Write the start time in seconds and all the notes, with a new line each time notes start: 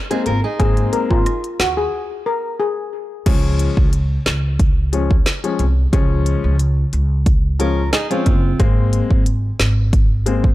0.10 G#3 A#3 C4 D#4 G#4, closed hi-hat
0.26 G#1 F4 A#4, closed hi-hat
0.44 D#4 G#4
0.59 G#1 G#3 A#3 C4 G#4, kick, closed hi-hat
0.77 closed hi-hat
0.93 A#4, closed hi-hat
1.11 G#1 F4, kick
1.26 cross-stick, closed hi-hat
1.44 closed hi-hat
1.60 D#2 F#4, snare, closed hi-hat
1.77 G#4
2.26 A#4
2.60 G#4
3.26 C#2 F3 G#3 C#4, kick, closed hi-hat, crash
3.59 closed hi-hat
3.77 C#2, kick
3.93 closed hi-hat
4.26 C#2, snare, closed hi-hat
4.60 kick, closed hi-hat
4.93 F3 G#3 C#4, closed hi-hat
5.11 kick
5.26 snare, closed hi-hat
5.44 F3 G#3 C#4, closed hi-hat
5.59 C2, closed hi-hat
5.93 C#2 F3 G#3 C#4, kick, closed hi-hat
6.26 closed hi-hat
6.44 C#2
6.59 closed hi-hat
6.93 C#2, closed hi-hat
7.26 kick, closed hi-hat
7.59 F3 G#3 C#4 F4 A#4, closed hi-hat
7.93 D#4 G#4, snare, closed hi-hat
8.10 F3 G#3 C4 C#4 F4, closed hi-hat
8.26 F#1, kick, closed hi-hat
8.59 G#1 G#3 A#3 C4, kick, closed hi-hat
8.93 closed hi-hat
9.11 G#1, kick
9.26 closed hi-hat
9.60 G#1, snare, closed hi-hat
9.93 kick, closed hi-hat
10.26 G#3 A#3 C4, closed hi-hat
10.44 kick